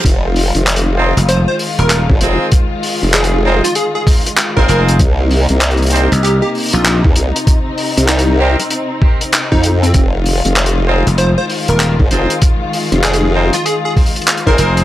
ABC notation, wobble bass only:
X:1
M:4/4
L:1/16
Q:"Swing 16ths" 1/4=97
K:Fm
V:1 name="Wobble bass" clef=bass
F,,,3 F,,,4 z6 A,,, F,,, z | z3 F,,,4 z6 A,,, z2 | C,,3 C,,4 z6 E,, C,, z | z3 C,,4 z6 F,,3 |
F,,,3 F,,,4 z6 A,,, F,,, z | z3 F,,,4 z6 A,,, z2 |]